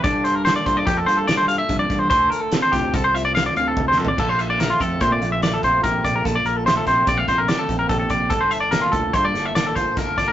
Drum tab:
CC |------------------------------|------------------------------|x-----------------------------|------------------------------|
HH |x--x--x--x--x--x--x--x--x--x--|x--x--x--x--x--x--x--x--------|---x--x--x--x--x--x--x--x--x--|x--x--x--x--x--x--x--x--x--x--|
SD |------o-----------o-----------|------o--o--------o-------o---|------o-----------o-----------|------o--o--------o-----------|
T1 |------------------------------|------------------------o-----|------------------------------|------------------------------|
FT |------------------------------|----------------------------o-|------------------------------|------------------------------|
BD |o--------o--o-----------o--o--|o--------o--o-----------o-----|o--------o--o--------o--o--o--|o--------o--o--o-----o--o--o--|

CC |------------------------------|
HH |x--x--x--x--x--x--x--x--x--x--|
SD |------o--------o--o-----o--o--|
T1 |------------------------------|
FT |------------------------------|
BD |o--------o--o--------o--o--o--|